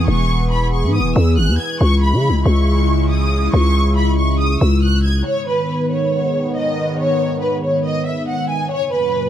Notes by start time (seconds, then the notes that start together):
Already playing: E3 B3 G#4
0.07 E1 C#6
0.51 B5
0.73 C#6
0.84 G#2
0.94 D#6
1.00 E1
1.16 E2 E6
1.37 G#1 F#6
1.48 E2
1.59 G#6
1.80 C#2 C#3 G#3 E4 C#6
2.02 B5
2.13 C#3
2.29 C#2
2.46 C#2 C#6
3.10 D#6
3.53 C#2 C#6
3.97 B5
4.18 C#6
4.40 D#6
4.61 C#2 E6
4.83 F#6
5.04 G#6
5.26 G#2 D#3 B3 C#5
5.48 B4
5.91 C#5
6.56 D#5
6.99 C#5
7.42 B4
7.63 C#5
7.85 D#5
8.06 E5
8.28 F#5
8.50 G#5
8.71 F#2 A#2 C#3 C#5
8.93 B4